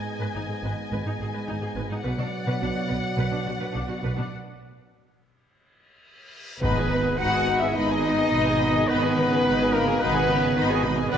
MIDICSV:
0, 0, Header, 1, 12, 480
1, 0, Start_track
1, 0, Key_signature, 5, "minor"
1, 0, Tempo, 567108
1, 1729, Time_signature, 4, 2, 24, 8
1, 9460, End_track
2, 0, Start_track
2, 0, Title_t, "Violin section"
2, 0, Program_c, 0, 48
2, 0, Note_on_c, 0, 75, 34
2, 1701, Note_off_c, 0, 75, 0
2, 1730, Note_on_c, 0, 74, 50
2, 3613, Note_off_c, 0, 74, 0
2, 5609, Note_on_c, 0, 75, 62
2, 5613, Note_on_c, 0, 83, 60
2, 5716, Note_off_c, 0, 75, 0
2, 5718, Note_off_c, 0, 83, 0
2, 5732, Note_on_c, 0, 80, 60
2, 5736, Note_on_c, 0, 71, 61
2, 5846, Note_off_c, 0, 80, 0
2, 5848, Note_off_c, 0, 71, 0
2, 5854, Note_on_c, 0, 83, 54
2, 5857, Note_on_c, 0, 75, 60
2, 5967, Note_off_c, 0, 83, 0
2, 5969, Note_off_c, 0, 75, 0
2, 5976, Note_on_c, 0, 80, 51
2, 5977, Note_on_c, 0, 71, 55
2, 6088, Note_off_c, 0, 71, 0
2, 6088, Note_off_c, 0, 80, 0
2, 6097, Note_on_c, 0, 83, 60
2, 6099, Note_on_c, 0, 75, 59
2, 6201, Note_off_c, 0, 83, 0
2, 6202, Note_off_c, 0, 75, 0
2, 6226, Note_on_c, 0, 71, 57
2, 6227, Note_on_c, 0, 80, 50
2, 6333, Note_off_c, 0, 71, 0
2, 6333, Note_on_c, 0, 83, 57
2, 6334, Note_off_c, 0, 80, 0
2, 6335, Note_on_c, 0, 75, 62
2, 6446, Note_off_c, 0, 83, 0
2, 6447, Note_off_c, 0, 75, 0
2, 6458, Note_on_c, 0, 71, 60
2, 6461, Note_on_c, 0, 80, 63
2, 6565, Note_on_c, 0, 75, 67
2, 6567, Note_on_c, 0, 83, 67
2, 6569, Note_off_c, 0, 71, 0
2, 6570, Note_off_c, 0, 80, 0
2, 6674, Note_off_c, 0, 75, 0
2, 6675, Note_off_c, 0, 83, 0
2, 6685, Note_on_c, 0, 80, 59
2, 6691, Note_on_c, 0, 71, 60
2, 6793, Note_on_c, 0, 75, 55
2, 6803, Note_off_c, 0, 80, 0
2, 6803, Note_on_c, 0, 83, 51
2, 6806, Note_off_c, 0, 71, 0
2, 6917, Note_off_c, 0, 75, 0
2, 6922, Note_off_c, 0, 83, 0
2, 6932, Note_on_c, 0, 71, 57
2, 6937, Note_on_c, 0, 80, 59
2, 7042, Note_on_c, 0, 75, 64
2, 7046, Note_off_c, 0, 71, 0
2, 7048, Note_off_c, 0, 80, 0
2, 7048, Note_on_c, 0, 83, 65
2, 7153, Note_off_c, 0, 75, 0
2, 7156, Note_off_c, 0, 83, 0
2, 7156, Note_on_c, 0, 71, 62
2, 7159, Note_on_c, 0, 80, 60
2, 7275, Note_on_c, 0, 75, 62
2, 7275, Note_on_c, 0, 83, 60
2, 7278, Note_off_c, 0, 71, 0
2, 7279, Note_off_c, 0, 80, 0
2, 7393, Note_on_c, 0, 71, 64
2, 7393, Note_on_c, 0, 80, 55
2, 7397, Note_off_c, 0, 75, 0
2, 7397, Note_off_c, 0, 83, 0
2, 7515, Note_off_c, 0, 71, 0
2, 7515, Note_off_c, 0, 80, 0
2, 7538, Note_on_c, 0, 75, 72
2, 7539, Note_on_c, 0, 83, 69
2, 7640, Note_off_c, 0, 75, 0
2, 7640, Note_off_c, 0, 83, 0
2, 7645, Note_on_c, 0, 71, 64
2, 7649, Note_on_c, 0, 80, 64
2, 7759, Note_on_c, 0, 75, 67
2, 7761, Note_off_c, 0, 71, 0
2, 7763, Note_off_c, 0, 80, 0
2, 7765, Note_on_c, 0, 83, 61
2, 7878, Note_off_c, 0, 75, 0
2, 7881, Note_off_c, 0, 83, 0
2, 7891, Note_on_c, 0, 80, 64
2, 7897, Note_on_c, 0, 71, 60
2, 8004, Note_off_c, 0, 80, 0
2, 8007, Note_off_c, 0, 71, 0
2, 8020, Note_on_c, 0, 75, 73
2, 8024, Note_on_c, 0, 83, 69
2, 8121, Note_off_c, 0, 75, 0
2, 8123, Note_off_c, 0, 83, 0
2, 8149, Note_on_c, 0, 80, 65
2, 8150, Note_on_c, 0, 71, 62
2, 8246, Note_on_c, 0, 75, 69
2, 8246, Note_on_c, 0, 83, 72
2, 8253, Note_off_c, 0, 71, 0
2, 8253, Note_off_c, 0, 80, 0
2, 8360, Note_off_c, 0, 75, 0
2, 8360, Note_off_c, 0, 83, 0
2, 8362, Note_on_c, 0, 80, 73
2, 8366, Note_on_c, 0, 71, 72
2, 8475, Note_on_c, 0, 75, 74
2, 8478, Note_off_c, 0, 80, 0
2, 8480, Note_off_c, 0, 71, 0
2, 8482, Note_on_c, 0, 83, 79
2, 8582, Note_on_c, 0, 80, 69
2, 8585, Note_off_c, 0, 75, 0
2, 8589, Note_off_c, 0, 83, 0
2, 8589, Note_on_c, 0, 71, 72
2, 8705, Note_on_c, 0, 83, 66
2, 8707, Note_off_c, 0, 80, 0
2, 8710, Note_off_c, 0, 71, 0
2, 8711, Note_on_c, 0, 75, 64
2, 8826, Note_on_c, 0, 80, 76
2, 8827, Note_on_c, 0, 71, 72
2, 8828, Note_off_c, 0, 83, 0
2, 8830, Note_off_c, 0, 75, 0
2, 8936, Note_on_c, 0, 83, 81
2, 8941, Note_on_c, 0, 75, 89
2, 8947, Note_off_c, 0, 71, 0
2, 8947, Note_off_c, 0, 80, 0
2, 9052, Note_off_c, 0, 83, 0
2, 9054, Note_on_c, 0, 71, 77
2, 9055, Note_off_c, 0, 75, 0
2, 9057, Note_on_c, 0, 80, 75
2, 9165, Note_on_c, 0, 75, 77
2, 9170, Note_on_c, 0, 83, 68
2, 9179, Note_off_c, 0, 71, 0
2, 9181, Note_off_c, 0, 80, 0
2, 9287, Note_on_c, 0, 71, 66
2, 9287, Note_on_c, 0, 80, 68
2, 9294, Note_off_c, 0, 75, 0
2, 9297, Note_off_c, 0, 83, 0
2, 9382, Note_off_c, 0, 71, 0
2, 9392, Note_on_c, 0, 71, 84
2, 9402, Note_on_c, 0, 78, 78
2, 9415, Note_off_c, 0, 80, 0
2, 9460, Note_off_c, 0, 71, 0
2, 9460, Note_off_c, 0, 78, 0
2, 9460, End_track
3, 0, Start_track
3, 0, Title_t, "Violin section"
3, 0, Program_c, 1, 48
3, 0, Note_on_c, 1, 80, 31
3, 1691, Note_off_c, 1, 80, 0
3, 1730, Note_on_c, 1, 78, 45
3, 3647, Note_off_c, 1, 78, 0
3, 5596, Note_on_c, 1, 71, 76
3, 6045, Note_off_c, 1, 71, 0
3, 6084, Note_on_c, 1, 78, 85
3, 6430, Note_on_c, 1, 76, 65
3, 6434, Note_off_c, 1, 78, 0
3, 6551, Note_on_c, 1, 75, 84
3, 6552, Note_off_c, 1, 76, 0
3, 7510, Note_on_c, 1, 71, 90
3, 7514, Note_off_c, 1, 75, 0
3, 8218, Note_off_c, 1, 71, 0
3, 8232, Note_on_c, 1, 70, 85
3, 8465, Note_on_c, 1, 71, 95
3, 8472, Note_off_c, 1, 70, 0
3, 9181, Note_off_c, 1, 71, 0
3, 9425, Note_on_c, 1, 71, 111
3, 9460, Note_off_c, 1, 71, 0
3, 9460, End_track
4, 0, Start_track
4, 0, Title_t, "Trumpet"
4, 0, Program_c, 2, 56
4, 5607, Note_on_c, 2, 71, 86
4, 6075, Note_on_c, 2, 78, 92
4, 6088, Note_off_c, 2, 71, 0
4, 6431, Note_on_c, 2, 76, 76
4, 6444, Note_off_c, 2, 78, 0
4, 6549, Note_off_c, 2, 76, 0
4, 6554, Note_on_c, 2, 75, 92
4, 7515, Note_on_c, 2, 71, 102
4, 7527, Note_off_c, 2, 75, 0
4, 8232, Note_on_c, 2, 70, 87
4, 8245, Note_off_c, 2, 71, 0
4, 8466, Note_on_c, 2, 71, 99
4, 8478, Note_off_c, 2, 70, 0
4, 9182, Note_off_c, 2, 71, 0
4, 9417, Note_on_c, 2, 71, 125
4, 9460, Note_off_c, 2, 71, 0
4, 9460, End_track
5, 0, Start_track
5, 0, Title_t, "Viola section"
5, 0, Program_c, 3, 48
5, 163, Note_on_c, 3, 71, 49
5, 215, Note_off_c, 3, 71, 0
5, 287, Note_on_c, 3, 63, 32
5, 338, Note_off_c, 3, 63, 0
5, 414, Note_on_c, 3, 68, 30
5, 463, Note_off_c, 3, 68, 0
5, 539, Note_on_c, 3, 71, 47
5, 586, Note_off_c, 3, 71, 0
5, 780, Note_on_c, 3, 71, 43
5, 827, Note_off_c, 3, 71, 0
5, 900, Note_on_c, 3, 63, 39
5, 947, Note_off_c, 3, 63, 0
5, 1025, Note_on_c, 3, 68, 41
5, 1071, Note_off_c, 3, 68, 0
5, 1136, Note_on_c, 3, 71, 48
5, 1183, Note_off_c, 3, 71, 0
5, 1255, Note_on_c, 3, 63, 49
5, 1302, Note_off_c, 3, 63, 0
5, 1372, Note_on_c, 3, 68, 37
5, 1420, Note_off_c, 3, 68, 0
5, 1490, Note_on_c, 3, 71, 51
5, 1538, Note_off_c, 3, 71, 0
5, 1617, Note_on_c, 3, 63, 44
5, 1664, Note_off_c, 3, 63, 0
5, 1733, Note_on_c, 3, 71, 61
5, 1780, Note_off_c, 3, 71, 0
5, 1850, Note_on_c, 3, 62, 33
5, 1897, Note_off_c, 3, 62, 0
5, 2091, Note_on_c, 3, 71, 61
5, 2138, Note_off_c, 3, 71, 0
5, 2223, Note_on_c, 3, 62, 46
5, 2267, Note_off_c, 3, 62, 0
5, 2339, Note_on_c, 3, 66, 38
5, 2383, Note_off_c, 3, 66, 0
5, 2445, Note_on_c, 3, 71, 54
5, 2492, Note_off_c, 3, 71, 0
5, 2687, Note_on_c, 3, 71, 49
5, 2734, Note_off_c, 3, 71, 0
5, 2799, Note_on_c, 3, 62, 46
5, 2848, Note_off_c, 3, 62, 0
5, 2931, Note_on_c, 3, 66, 42
5, 2977, Note_off_c, 3, 66, 0
5, 3047, Note_on_c, 3, 71, 52
5, 3094, Note_off_c, 3, 71, 0
5, 3162, Note_on_c, 3, 62, 48
5, 3210, Note_off_c, 3, 62, 0
5, 3282, Note_on_c, 3, 66, 42
5, 3331, Note_off_c, 3, 66, 0
5, 3418, Note_on_c, 3, 71, 54
5, 3463, Note_off_c, 3, 71, 0
5, 3528, Note_on_c, 3, 62, 44
5, 3576, Note_off_c, 3, 62, 0
5, 5602, Note_on_c, 3, 71, 71
5, 5605, Note_on_c, 3, 63, 66
5, 5712, Note_off_c, 3, 71, 0
5, 5714, Note_off_c, 3, 63, 0
5, 5726, Note_on_c, 3, 68, 58
5, 5731, Note_on_c, 3, 75, 60
5, 5843, Note_off_c, 3, 68, 0
5, 5845, Note_off_c, 3, 75, 0
5, 5845, Note_on_c, 3, 63, 54
5, 5845, Note_on_c, 3, 71, 52
5, 5962, Note_off_c, 3, 63, 0
5, 5963, Note_off_c, 3, 71, 0
5, 5963, Note_on_c, 3, 75, 53
5, 5965, Note_on_c, 3, 68, 57
5, 6082, Note_off_c, 3, 75, 0
5, 6083, Note_off_c, 3, 68, 0
5, 6086, Note_on_c, 3, 63, 61
5, 6086, Note_on_c, 3, 71, 67
5, 6195, Note_off_c, 3, 63, 0
5, 6195, Note_off_c, 3, 71, 0
5, 6200, Note_on_c, 3, 68, 56
5, 6201, Note_on_c, 3, 75, 58
5, 6320, Note_off_c, 3, 68, 0
5, 6321, Note_off_c, 3, 75, 0
5, 6329, Note_on_c, 3, 71, 56
5, 6330, Note_on_c, 3, 63, 60
5, 6444, Note_off_c, 3, 71, 0
5, 6445, Note_off_c, 3, 63, 0
5, 6455, Note_on_c, 3, 75, 51
5, 6456, Note_on_c, 3, 68, 56
5, 6567, Note_off_c, 3, 75, 0
5, 6568, Note_off_c, 3, 68, 0
5, 6568, Note_on_c, 3, 63, 65
5, 6570, Note_on_c, 3, 71, 58
5, 6676, Note_off_c, 3, 63, 0
5, 6677, Note_off_c, 3, 71, 0
5, 6695, Note_on_c, 3, 75, 60
5, 6698, Note_on_c, 3, 68, 62
5, 6808, Note_off_c, 3, 75, 0
5, 6809, Note_off_c, 3, 68, 0
5, 6817, Note_on_c, 3, 63, 61
5, 6818, Note_on_c, 3, 71, 60
5, 6929, Note_off_c, 3, 63, 0
5, 6929, Note_off_c, 3, 71, 0
5, 6935, Note_on_c, 3, 75, 59
5, 6938, Note_on_c, 3, 68, 56
5, 7047, Note_off_c, 3, 75, 0
5, 7049, Note_off_c, 3, 68, 0
5, 7052, Note_on_c, 3, 63, 64
5, 7058, Note_on_c, 3, 71, 68
5, 7158, Note_off_c, 3, 63, 0
5, 7161, Note_off_c, 3, 71, 0
5, 7175, Note_on_c, 3, 68, 60
5, 7177, Note_on_c, 3, 75, 60
5, 7287, Note_off_c, 3, 68, 0
5, 7288, Note_off_c, 3, 75, 0
5, 7302, Note_on_c, 3, 71, 64
5, 7303, Note_on_c, 3, 63, 61
5, 7410, Note_off_c, 3, 63, 0
5, 7410, Note_off_c, 3, 71, 0
5, 7412, Note_on_c, 3, 75, 66
5, 7413, Note_on_c, 3, 68, 70
5, 7525, Note_off_c, 3, 68, 0
5, 7525, Note_off_c, 3, 75, 0
5, 7527, Note_on_c, 3, 63, 73
5, 7527, Note_on_c, 3, 71, 76
5, 7634, Note_off_c, 3, 63, 0
5, 7634, Note_off_c, 3, 71, 0
5, 7643, Note_on_c, 3, 68, 63
5, 7645, Note_on_c, 3, 75, 66
5, 7760, Note_off_c, 3, 68, 0
5, 7761, Note_off_c, 3, 75, 0
5, 7761, Note_on_c, 3, 71, 65
5, 7762, Note_on_c, 3, 63, 62
5, 7876, Note_on_c, 3, 75, 66
5, 7879, Note_off_c, 3, 71, 0
5, 7879, Note_on_c, 3, 68, 61
5, 7880, Note_off_c, 3, 63, 0
5, 7991, Note_on_c, 3, 63, 76
5, 7994, Note_on_c, 3, 71, 74
5, 7997, Note_off_c, 3, 75, 0
5, 7998, Note_off_c, 3, 68, 0
5, 8105, Note_off_c, 3, 63, 0
5, 8107, Note_off_c, 3, 71, 0
5, 8117, Note_on_c, 3, 68, 68
5, 8120, Note_on_c, 3, 75, 68
5, 8232, Note_on_c, 3, 63, 68
5, 8233, Note_on_c, 3, 71, 71
5, 8237, Note_off_c, 3, 68, 0
5, 8238, Note_off_c, 3, 75, 0
5, 8347, Note_on_c, 3, 68, 64
5, 8348, Note_on_c, 3, 75, 69
5, 8353, Note_off_c, 3, 63, 0
5, 8354, Note_off_c, 3, 71, 0
5, 8466, Note_on_c, 3, 63, 78
5, 8467, Note_on_c, 3, 71, 74
5, 8470, Note_off_c, 3, 68, 0
5, 8471, Note_off_c, 3, 75, 0
5, 8581, Note_off_c, 3, 63, 0
5, 8581, Note_off_c, 3, 71, 0
5, 8595, Note_on_c, 3, 68, 72
5, 8595, Note_on_c, 3, 75, 73
5, 8705, Note_on_c, 3, 63, 74
5, 8708, Note_on_c, 3, 71, 75
5, 8713, Note_off_c, 3, 68, 0
5, 8713, Note_off_c, 3, 75, 0
5, 8827, Note_off_c, 3, 63, 0
5, 8828, Note_on_c, 3, 68, 68
5, 8828, Note_on_c, 3, 75, 67
5, 8829, Note_off_c, 3, 71, 0
5, 8945, Note_on_c, 3, 63, 91
5, 8947, Note_on_c, 3, 71, 82
5, 8948, Note_off_c, 3, 68, 0
5, 8948, Note_off_c, 3, 75, 0
5, 9057, Note_off_c, 3, 63, 0
5, 9058, Note_off_c, 3, 71, 0
5, 9066, Note_on_c, 3, 68, 76
5, 9067, Note_on_c, 3, 75, 77
5, 9177, Note_on_c, 3, 63, 73
5, 9178, Note_on_c, 3, 71, 76
5, 9186, Note_off_c, 3, 68, 0
5, 9186, Note_off_c, 3, 75, 0
5, 9295, Note_on_c, 3, 68, 83
5, 9298, Note_on_c, 3, 75, 80
5, 9300, Note_off_c, 3, 63, 0
5, 9301, Note_off_c, 3, 71, 0
5, 9405, Note_on_c, 3, 62, 90
5, 9407, Note_on_c, 3, 71, 100
5, 9418, Note_off_c, 3, 68, 0
5, 9420, Note_off_c, 3, 75, 0
5, 9460, Note_off_c, 3, 62, 0
5, 9460, Note_off_c, 3, 71, 0
5, 9460, End_track
6, 0, Start_track
6, 0, Title_t, "French horn section"
6, 0, Program_c, 4, 60
6, 0, Note_on_c, 4, 59, 39
6, 0, Note_on_c, 4, 63, 35
6, 1698, Note_off_c, 4, 63, 0
6, 1700, Note_off_c, 4, 59, 0
6, 1729, Note_on_c, 4, 59, 49
6, 1735, Note_on_c, 4, 62, 50
6, 3612, Note_off_c, 4, 59, 0
6, 3615, Note_off_c, 4, 62, 0
6, 5593, Note_on_c, 4, 59, 92
6, 6043, Note_off_c, 4, 59, 0
6, 6093, Note_on_c, 4, 66, 111
6, 6439, Note_off_c, 4, 66, 0
6, 6451, Note_on_c, 4, 64, 89
6, 6565, Note_off_c, 4, 64, 0
6, 6567, Note_on_c, 4, 63, 112
6, 7512, Note_on_c, 4, 59, 105
6, 7522, Note_off_c, 4, 63, 0
6, 8233, Note_off_c, 4, 59, 0
6, 8240, Note_on_c, 4, 58, 95
6, 8477, Note_off_c, 4, 58, 0
6, 8487, Note_on_c, 4, 59, 112
6, 9178, Note_off_c, 4, 59, 0
6, 9418, Note_on_c, 4, 59, 127
6, 9460, Note_off_c, 4, 59, 0
6, 9460, End_track
7, 0, Start_track
7, 0, Title_t, "Trombone section"
7, 0, Program_c, 5, 61
7, 0, Note_on_c, 5, 44, 37
7, 0, Note_on_c, 5, 56, 35
7, 1696, Note_off_c, 5, 44, 0
7, 1696, Note_off_c, 5, 56, 0
7, 1732, Note_on_c, 5, 47, 54
7, 1732, Note_on_c, 5, 54, 55
7, 3614, Note_off_c, 5, 47, 0
7, 3614, Note_off_c, 5, 54, 0
7, 5594, Note_on_c, 5, 51, 72
7, 5599, Note_on_c, 5, 59, 72
7, 9387, Note_off_c, 5, 51, 0
7, 9389, Note_off_c, 5, 59, 0
7, 9423, Note_on_c, 5, 59, 100
7, 9426, Note_on_c, 5, 54, 105
7, 9460, Note_off_c, 5, 54, 0
7, 9460, Note_off_c, 5, 59, 0
7, 9460, End_track
8, 0, Start_track
8, 0, Title_t, "Cello section"
8, 0, Program_c, 6, 48
8, 169, Note_on_c, 6, 44, 51
8, 219, Note_off_c, 6, 44, 0
8, 292, Note_on_c, 6, 44, 36
8, 341, Note_off_c, 6, 44, 0
8, 415, Note_on_c, 6, 44, 36
8, 463, Note_off_c, 6, 44, 0
8, 531, Note_on_c, 6, 44, 46
8, 580, Note_off_c, 6, 44, 0
8, 766, Note_on_c, 6, 44, 45
8, 816, Note_off_c, 6, 44, 0
8, 891, Note_on_c, 6, 44, 36
8, 940, Note_off_c, 6, 44, 0
8, 1017, Note_on_c, 6, 44, 36
8, 1065, Note_off_c, 6, 44, 0
8, 1141, Note_on_c, 6, 44, 54
8, 1187, Note_off_c, 6, 44, 0
8, 1248, Note_on_c, 6, 44, 45
8, 1297, Note_off_c, 6, 44, 0
8, 1362, Note_on_c, 6, 44, 41
8, 1412, Note_off_c, 6, 44, 0
8, 1482, Note_on_c, 6, 44, 58
8, 1531, Note_off_c, 6, 44, 0
8, 1597, Note_on_c, 6, 44, 42
8, 1647, Note_off_c, 6, 44, 0
8, 1723, Note_on_c, 6, 47, 64
8, 1772, Note_off_c, 6, 47, 0
8, 1845, Note_on_c, 6, 47, 41
8, 1893, Note_off_c, 6, 47, 0
8, 2085, Note_on_c, 6, 47, 65
8, 2133, Note_off_c, 6, 47, 0
8, 2206, Note_on_c, 6, 47, 45
8, 2253, Note_off_c, 6, 47, 0
8, 2324, Note_on_c, 6, 47, 44
8, 2372, Note_off_c, 6, 47, 0
8, 2439, Note_on_c, 6, 47, 53
8, 2487, Note_off_c, 6, 47, 0
8, 2684, Note_on_c, 6, 47, 58
8, 2732, Note_off_c, 6, 47, 0
8, 2801, Note_on_c, 6, 47, 43
8, 2849, Note_off_c, 6, 47, 0
8, 2927, Note_on_c, 6, 47, 43
8, 2974, Note_off_c, 6, 47, 0
8, 3049, Note_on_c, 6, 47, 60
8, 3096, Note_off_c, 6, 47, 0
8, 3167, Note_on_c, 6, 47, 40
8, 3214, Note_off_c, 6, 47, 0
8, 3283, Note_on_c, 6, 47, 44
8, 3331, Note_off_c, 6, 47, 0
8, 3406, Note_on_c, 6, 47, 56
8, 3454, Note_off_c, 6, 47, 0
8, 3532, Note_on_c, 6, 47, 38
8, 3580, Note_off_c, 6, 47, 0
8, 6550, Note_on_c, 6, 56, 71
8, 7002, Note_off_c, 6, 56, 0
8, 7049, Note_on_c, 6, 47, 79
8, 7517, Note_on_c, 6, 51, 92
8, 7523, Note_off_c, 6, 47, 0
8, 7752, Note_off_c, 6, 51, 0
8, 7758, Note_on_c, 6, 49, 84
8, 8473, Note_on_c, 6, 47, 83
8, 8475, Note_off_c, 6, 49, 0
8, 8707, Note_off_c, 6, 47, 0
8, 8718, Note_on_c, 6, 49, 92
8, 8945, Note_on_c, 6, 51, 105
8, 8948, Note_off_c, 6, 49, 0
8, 9184, Note_off_c, 6, 51, 0
8, 9184, Note_on_c, 6, 47, 95
8, 9415, Note_on_c, 6, 50, 97
8, 9422, Note_off_c, 6, 47, 0
8, 9460, Note_off_c, 6, 50, 0
8, 9460, End_track
9, 0, Start_track
9, 0, Title_t, "Timpani"
9, 0, Program_c, 7, 47
9, 5609, Note_on_c, 7, 44, 100
9, 6291, Note_off_c, 7, 44, 0
9, 9460, End_track
10, 0, Start_track
10, 0, Title_t, "Double bass section"
10, 0, Program_c, 8, 48
10, 300, Note_on_c, 8, 32, 35
10, 348, Note_off_c, 8, 32, 0
10, 536, Note_on_c, 8, 32, 53
10, 584, Note_off_c, 8, 32, 0
10, 779, Note_on_c, 8, 32, 52
10, 826, Note_off_c, 8, 32, 0
10, 1018, Note_on_c, 8, 32, 34
10, 1065, Note_off_c, 8, 32, 0
10, 1261, Note_on_c, 8, 32, 42
10, 1307, Note_off_c, 8, 32, 0
10, 1489, Note_on_c, 8, 32, 60
10, 1537, Note_off_c, 8, 32, 0
10, 1738, Note_on_c, 8, 35, 57
10, 1784, Note_off_c, 8, 35, 0
10, 2223, Note_on_c, 8, 35, 43
10, 2267, Note_off_c, 8, 35, 0
10, 2456, Note_on_c, 8, 35, 62
10, 2501, Note_off_c, 8, 35, 0
10, 2700, Note_on_c, 8, 35, 55
10, 2744, Note_off_c, 8, 35, 0
10, 2941, Note_on_c, 8, 35, 39
10, 2985, Note_off_c, 8, 35, 0
10, 3181, Note_on_c, 8, 35, 44
10, 3225, Note_off_c, 8, 35, 0
10, 3419, Note_on_c, 8, 35, 60
10, 3465, Note_off_c, 8, 35, 0
10, 5605, Note_on_c, 8, 32, 78
10, 6026, Note_off_c, 8, 32, 0
10, 6089, Note_on_c, 8, 32, 75
10, 6508, Note_off_c, 8, 32, 0
10, 6570, Note_on_c, 8, 32, 77
10, 6989, Note_off_c, 8, 32, 0
10, 7049, Note_on_c, 8, 32, 82
10, 7466, Note_off_c, 8, 32, 0
10, 7533, Note_on_c, 8, 32, 88
10, 7948, Note_off_c, 8, 32, 0
10, 8012, Note_on_c, 8, 32, 88
10, 8426, Note_off_c, 8, 32, 0
10, 8489, Note_on_c, 8, 32, 94
10, 8901, Note_off_c, 8, 32, 0
10, 8949, Note_on_c, 8, 32, 100
10, 9367, Note_off_c, 8, 32, 0
10, 9424, Note_on_c, 8, 35, 109
10, 9460, Note_off_c, 8, 35, 0
10, 9460, End_track
11, 0, Start_track
11, 0, Title_t, "Impact"
11, 0, Program_c, 10, 103
11, 5599, Note_on_c, 10, 60, 86
11, 7518, Note_off_c, 10, 60, 0
11, 9460, End_track
12, 0, Start_track
12, 0, Title_t, "Reverse cymbal"
12, 0, Program_c, 11, 119
12, 3649, Note_on_c, 11, 60, 50
12, 5600, Note_off_c, 11, 60, 0
12, 9460, End_track
0, 0, End_of_file